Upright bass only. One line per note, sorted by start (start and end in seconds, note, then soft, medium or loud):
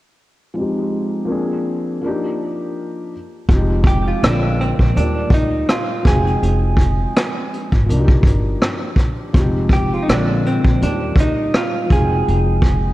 3.49 4.10 F1 medium
4.23 4.70 A#1 medium
4.80 4.93 A#1 medium
4.96 5.26 D#2 loud
5.31 5.62 D2 medium
6.06 6.36 F1 loud
6.43 7.03 F1 medium
7.73 7.86 G#1 medium
7.89 8.19 C2 loud
8.24 8.54 G1 medium
9.35 9.96 F1 medium
10.09 10.56 A#1 medium
10.65 10.78 A#1 medium
10.82 11.12 D#2 loud
11.16 11.47 D2 medium
11.91 12.21 F1 medium
12.28 12.89 F1 medium